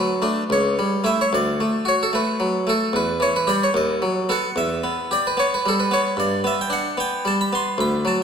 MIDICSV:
0, 0, Header, 1, 2, 480
1, 0, Start_track
1, 0, Tempo, 554017
1, 1148, Time_signature, 6, 3, 24, 8
1, 1620, Tempo, 535236
1, 7326, End_track
2, 0, Start_track
2, 0, Title_t, "Harpsichord"
2, 0, Program_c, 0, 6
2, 0, Note_on_c, 0, 54, 46
2, 0, Note_on_c, 0, 71, 72
2, 189, Note_on_c, 0, 57, 44
2, 193, Note_on_c, 0, 62, 45
2, 199, Note_off_c, 0, 54, 0
2, 361, Note_off_c, 0, 57, 0
2, 363, Note_off_c, 0, 62, 0
2, 434, Note_on_c, 0, 37, 69
2, 437, Note_off_c, 0, 71, 0
2, 454, Note_on_c, 0, 73, 76
2, 664, Note_off_c, 0, 37, 0
2, 683, Note_on_c, 0, 55, 50
2, 900, Note_on_c, 0, 57, 42
2, 905, Note_on_c, 0, 64, 49
2, 919, Note_on_c, 0, 76, 83
2, 924, Note_off_c, 0, 73, 0
2, 929, Note_off_c, 0, 55, 0
2, 1034, Note_off_c, 0, 76, 0
2, 1051, Note_on_c, 0, 73, 70
2, 1075, Note_off_c, 0, 57, 0
2, 1078, Note_off_c, 0, 64, 0
2, 1150, Note_on_c, 0, 38, 49
2, 1159, Note_off_c, 0, 73, 0
2, 1165, Note_on_c, 0, 74, 72
2, 1379, Note_off_c, 0, 38, 0
2, 1390, Note_on_c, 0, 57, 48
2, 1560, Note_off_c, 0, 74, 0
2, 1605, Note_on_c, 0, 66, 51
2, 1633, Note_on_c, 0, 73, 76
2, 1635, Note_off_c, 0, 57, 0
2, 1748, Note_off_c, 0, 73, 0
2, 1762, Note_on_c, 0, 69, 75
2, 1854, Note_on_c, 0, 57, 57
2, 1866, Note_off_c, 0, 66, 0
2, 1872, Note_off_c, 0, 69, 0
2, 1872, Note_on_c, 0, 71, 84
2, 2095, Note_on_c, 0, 54, 49
2, 2109, Note_off_c, 0, 57, 0
2, 2336, Note_on_c, 0, 57, 51
2, 2347, Note_off_c, 0, 71, 0
2, 2351, Note_off_c, 0, 54, 0
2, 2358, Note_on_c, 0, 69, 82
2, 2573, Note_on_c, 0, 40, 61
2, 2581, Note_off_c, 0, 57, 0
2, 2593, Note_off_c, 0, 69, 0
2, 2598, Note_on_c, 0, 71, 78
2, 2813, Note_off_c, 0, 40, 0
2, 2814, Note_on_c, 0, 52, 52
2, 2832, Note_off_c, 0, 71, 0
2, 2833, Note_on_c, 0, 73, 83
2, 2949, Note_off_c, 0, 73, 0
2, 2959, Note_on_c, 0, 71, 76
2, 3057, Note_on_c, 0, 55, 44
2, 3059, Note_on_c, 0, 67, 45
2, 3071, Note_off_c, 0, 52, 0
2, 3072, Note_off_c, 0, 71, 0
2, 3073, Note_on_c, 0, 74, 84
2, 3190, Note_off_c, 0, 74, 0
2, 3203, Note_on_c, 0, 73, 71
2, 3234, Note_off_c, 0, 55, 0
2, 3235, Note_off_c, 0, 67, 0
2, 3299, Note_on_c, 0, 39, 66
2, 3316, Note_off_c, 0, 73, 0
2, 3321, Note_on_c, 0, 75, 87
2, 3539, Note_off_c, 0, 39, 0
2, 3549, Note_on_c, 0, 54, 52
2, 3728, Note_off_c, 0, 75, 0
2, 3792, Note_on_c, 0, 59, 49
2, 3796, Note_on_c, 0, 69, 47
2, 3804, Note_off_c, 0, 54, 0
2, 3814, Note_on_c, 0, 78, 88
2, 3965, Note_off_c, 0, 59, 0
2, 3967, Note_off_c, 0, 69, 0
2, 4032, Note_on_c, 0, 40, 56
2, 4043, Note_off_c, 0, 78, 0
2, 4046, Note_on_c, 0, 76, 88
2, 4264, Note_off_c, 0, 40, 0
2, 4280, Note_on_c, 0, 59, 51
2, 4521, Note_off_c, 0, 76, 0
2, 4527, Note_on_c, 0, 67, 54
2, 4530, Note_off_c, 0, 59, 0
2, 4542, Note_on_c, 0, 74, 76
2, 4650, Note_off_c, 0, 74, 0
2, 4670, Note_on_c, 0, 71, 87
2, 4760, Note_on_c, 0, 59, 52
2, 4775, Note_off_c, 0, 71, 0
2, 4777, Note_off_c, 0, 67, 0
2, 4780, Note_on_c, 0, 73, 99
2, 4891, Note_off_c, 0, 73, 0
2, 4914, Note_on_c, 0, 71, 82
2, 5013, Note_off_c, 0, 59, 0
2, 5015, Note_on_c, 0, 55, 60
2, 5018, Note_off_c, 0, 71, 0
2, 5040, Note_on_c, 0, 69, 88
2, 5140, Note_off_c, 0, 69, 0
2, 5142, Note_on_c, 0, 71, 78
2, 5245, Note_on_c, 0, 59, 56
2, 5249, Note_off_c, 0, 71, 0
2, 5258, Note_off_c, 0, 55, 0
2, 5266, Note_on_c, 0, 73, 86
2, 5455, Note_off_c, 0, 73, 0
2, 5477, Note_on_c, 0, 43, 61
2, 5478, Note_off_c, 0, 59, 0
2, 5500, Note_on_c, 0, 74, 72
2, 5690, Note_off_c, 0, 74, 0
2, 5705, Note_off_c, 0, 43, 0
2, 5720, Note_on_c, 0, 59, 54
2, 5744, Note_on_c, 0, 76, 87
2, 5846, Note_off_c, 0, 76, 0
2, 5873, Note_on_c, 0, 79, 84
2, 5951, Note_on_c, 0, 62, 51
2, 5966, Note_off_c, 0, 59, 0
2, 5971, Note_off_c, 0, 79, 0
2, 5976, Note_on_c, 0, 78, 97
2, 6198, Note_on_c, 0, 59, 59
2, 6202, Note_off_c, 0, 62, 0
2, 6202, Note_off_c, 0, 78, 0
2, 6222, Note_on_c, 0, 79, 105
2, 6444, Note_off_c, 0, 59, 0
2, 6444, Note_off_c, 0, 79, 0
2, 6446, Note_on_c, 0, 55, 57
2, 6467, Note_on_c, 0, 81, 94
2, 6566, Note_off_c, 0, 81, 0
2, 6589, Note_on_c, 0, 83, 86
2, 6687, Note_off_c, 0, 55, 0
2, 6687, Note_off_c, 0, 83, 0
2, 6692, Note_on_c, 0, 59, 53
2, 6714, Note_on_c, 0, 84, 94
2, 6917, Note_off_c, 0, 59, 0
2, 6922, Note_on_c, 0, 38, 59
2, 6928, Note_off_c, 0, 84, 0
2, 6943, Note_on_c, 0, 83, 81
2, 7144, Note_off_c, 0, 38, 0
2, 7161, Note_on_c, 0, 54, 46
2, 7162, Note_off_c, 0, 83, 0
2, 7183, Note_on_c, 0, 81, 83
2, 7282, Note_off_c, 0, 81, 0
2, 7326, Note_off_c, 0, 54, 0
2, 7326, End_track
0, 0, End_of_file